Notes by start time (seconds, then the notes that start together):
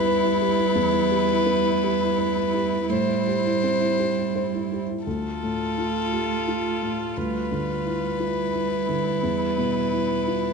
Already playing: D2 G3 B3 E4 G4 B4
0.05 B4
0.23 E4
0.41 G4
0.58 E4
0.75 E2
0.93 E4
1.10 G4
1.28 E4
1.46 B3
1.65 E4
1.83 G4
2.00 E4
2.18 B4
2.36 E4
2.53 G4
2.71 E4
2.88 A2 G3 E4 C5
3.07 E4
3.27 G4
3.45 E4
3.64 C4
3.81 E4
3.98 G4
4.18 E4
4.35 C5
4.54 E4
4.72 G4
4.89 E4
5.05 D2 A3 F4 A4
5.43 A2
5.78 F4
6.12 G4
6.48 F4
6.82 A2
7.17 D2 G3 B4
7.52 D3
7.85 E4
8.19 E4 F4
8.53 E4
8.88 D3
9.23 E2
9.58 B2
9.93 E4
10.28 F4